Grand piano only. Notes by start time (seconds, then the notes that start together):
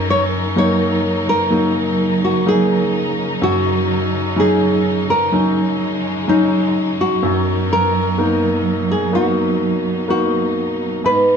Already playing: F#2
0.56 F#3 A#3 D#4
1.50 F#3 A#3 D#4
2.46 F#3 A#3 D#4
3.42 F#2
4.36 F#3 C#4 D#4
5.32 F#3 C#4 D#4
6.28 F#3 C#4 D#4
7.23 F#2
8.18 A#3 B3 D#4
9.12 A#3 B3 D#4
10.08 A#3 B3 D#4
11.04 G#2